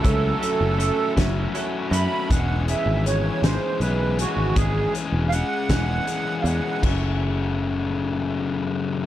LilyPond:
<<
  \new Staff \with { instrumentName = "Accordion" } { \time 6/8 \key fis \minor \tempo 4. = 53 a'4. r4 <ais'' b''>8 | fis''8 e''8 cis''8 bis'8 b'8 fis'8 | gis'8 r8 <eis'' fis''>4. <eis'' fis''>8 | r2. | }
  \new Staff \with { instrumentName = "Clean electric guitar" } { \time 6/8 \key fis \minor <fis cis' e' a'>8 <fis cis' e' a'>8 <fis cis' e' a'>8 <fis cis' e' a'>8 <fis cis' e' a'>8 <fis cis' e' a'>8 | r2. | r2. | r2. | }
  \new Staff \with { instrumentName = "Distorted electric guitar" } { \time 6/8 \key fis \minor <fis a cis' fis'>8 <a cis' fis'>4 <fis a cis' fis'>8 <fis a cis' fis'>8 <a cis' fis'>8 | <e gis cis' gis'>8 <gis cis' gis'>4 <e gis cis' gis'>8 <e gis cis' gis'>8 <gis cis' gis'>8 | <e gis cis' gis'>8 <gis cis' gis'>4 <e gis cis' gis'>8 <e gis cis' gis'>8 <gis cis' gis'>8 | <fis, cis fis a cis' fis'>2. | }
  \new Staff \with { instrumentName = "Picked electric bass" } { \clef bass \time 6/8 \key fis \minor cis,8 r16 fis,,8 r16 fis,,8 r8 fis,16 r16 | e,,8. gis,,8. gis,,16 r16 b,,8. gis,,16 | gis,,8 r16 e,,8 r16 e,,8 r8 e,16 r16 | fis,,2. | }
  \new DrumStaff \with { instrumentName = "Drums" } \drummode { \time 6/8 <hh bd>8 hh8 hh8 <hh bd sn>8 hh8 hh8 | <hh bd>8 hh8 hh8 <hh sn>8 hh8 hh8 | <hh bd>8 hh8 hh8 <hh bd sn>8 hh8 hh8 | <cymc bd>4. r4. | }
>>